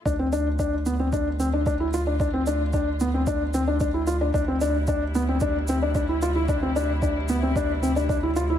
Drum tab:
SH |x-x-x-x-x-x-x-x-|x-x-x-x-x-x-x-x-|x-x-x-x-x-x-x-x-|x-x-x-x-x-xxx-x-|
BD |o---o---o---o---|o---o---o---o---|o---o---o---o---|o---o---o---o---|